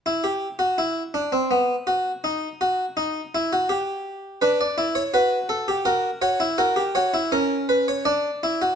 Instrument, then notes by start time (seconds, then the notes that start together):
harpsichord
0.06 E4
0.24 G4
0.59 F#4
0.78 E4
1.14 D4
1.32 C4
1.51 B3
1.87 F#4
2.24 D#4
2.61 F#4
2.97 D#4
3.35 E4
3.53 F#4
3.69 G4
4.42 D4 B4
4.61 D5
4.78 E4
4.95 C#5
5.14 F#4 B4
5.49 A4
5.68 G4
5.85 F#4 A#4
6.22 F#4 C#5
6.40 E4
6.58 F#4 A#4
6.76 G4
6.95 F#4 C#5
7.14 E4
7.32 C#4 A#4
7.69 B4
7.88 C#5
8.05 D4 D5
8.43 E4
8.62 F#4